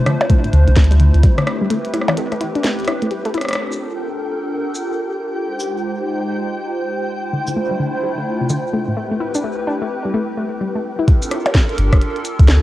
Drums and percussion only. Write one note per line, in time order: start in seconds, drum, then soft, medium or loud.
0.06 cross-stick medium
0.06 closed hi-hat medium
0.21 closed hi-hat soft
0.21 percussion blips medium
0.30 kick loud
0.30 closed hi-hat medium
0.44 closed hi-hat soft
0.53 closed hi-hat medium
0.68 closed hi-hat soft
0.76 kick loud
0.76 snare loud
0.76 closed hi-hat medium
0.84 closed hi-hat medium
0.91 closed hi-hat soft
0.91 closed hi-hat medium
1.00 closed hi-hat medium
1.14 closed hi-hat soft
1.23 kick loud
1.23 closed hi-hat medium
1.38 cross-stick medium
1.38 closed hi-hat soft
1.47 cross-stick medium
1.47 closed hi-hat soft
1.70 closed hi-hat medium
1.85 closed hi-hat soft
1.94 cross-stick soft
1.94 closed hi-hat medium
2.02 cross-stick medium
2.08 cross-stick medium
2.08 closed hi-hat soft
2.08 percussion blips medium
2.17 closed hi-hat loud
2.32 cross-stick soft
2.32 closed hi-hat soft
2.41 closed hi-hat medium
2.55 closed hi-hat soft
2.64 snare loud
2.64 closed hi-hat medium
2.79 closed hi-hat soft
2.84 cross-stick medium
2.84 closed hi-hat soft
2.87 closed hi-hat medium
3.02 closed hi-hat soft
3.11 closed hi-hat loud
3.25 closed hi-hat soft
3.34 cross-stick soft
3.34 closed hi-hat medium
3.41 cross-stick soft
3.41 closed hi-hat medium
3.45 cross-stick medium
3.49 cross-stick medium
3.49 closed hi-hat medium
3.51 cross-stick medium
3.53 cross-stick medium
3.53 closed hi-hat medium
3.55 cross-stick medium
3.72 shaker medium
4.75 shaker medium
5.60 shaker medium
7.47 shaker medium
8.50 shaker medium
9.35 shaker medium
11.08 kick loud
11.08 closed hi-hat medium
11.22 closed hi-hat soft
11.22 shaker medium
11.31 cross-stick medium
11.31 closed hi-hat loud
11.46 closed hi-hat medium
11.46 percussion blips medium
11.55 kick loud
11.55 snare loud
11.55 closed hi-hat medium
11.69 closed hi-hat soft
11.78 closed hi-hat loud
11.93 kick loud
11.93 cross-stick medium
11.93 closed hi-hat medium
12.02 closed hi-hat medium
12.16 closed hi-hat soft
12.25 closed hi-hat medium
12.25 shaker medium
12.39 kick loud
12.39 closed hi-hat medium
12.48 snare loud
12.48 closed hi-hat medium